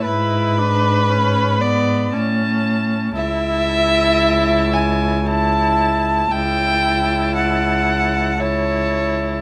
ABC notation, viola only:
X:1
M:3/4
L:1/8
Q:1/4=57
K:Emix
V:1 name="Viola"
E D C B, C2 | [K:A] E4 E2 | E4 E2 |]